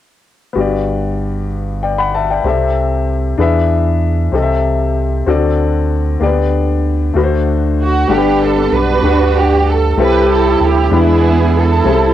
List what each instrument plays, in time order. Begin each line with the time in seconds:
0.53 analog synth bass G1, grand piano G2 B3 F#4
0.57 grand piano G4 D5
1.83 grand piano D5 G5
1.98 grand piano F#5 B5
2.14 grand piano E5 A5
2.30 grand piano D5 G5
2.44 analog synth bass C2, grand piano C3 C4 G4 A4
2.48 grand piano E5
3.38 analog synth bass E2, grand piano E3 D4 G#4 B4 E5
4.32 analog synth bass C2, grand piano C3 C4 G4 A4 D#5
4.42 grand piano E5
5.26 analog synth bass D2, grand piano D3 C4 F#4 A4 D5
6.20 analog synth bass D2, grand piano D3 A#3 D4 G4 D5
6.26 grand piano B3
7.14 analog synth bass D2, grand piano D3 A3 D4 F#4 B4
7.23 grand piano C5
7.83 string section F#4
8.08 analog synth bass G1, grand piano G2 G3 D4 A4 F#5, string section B3 D4
8.13 string section G4
8.18 grand piano B4
8.43 string section A4
8.72 analog synth bass B1, string section D4 F#4 B4
9.03 analog synth bass D2, grand piano G3 D4 B4 F#5
9.39 string section G4
9.70 string section A4
9.97 analog synth bass C2, grand piano C3 G3 C4 E4 A4, string section E4 G4
10.03 string section B4
10.35 string section A4
10.60 analog synth bass D2
10.66 string section G4
10.90 analog synth bass E2, grand piano E3 G#3 D4 E4 B4
10.96 string section B3 E4 G#4
11.57 string section E4 A4
11.84 analog synth bass C2, grand piano C3 G3 C4 E4 G#4
11.94 grand piano A4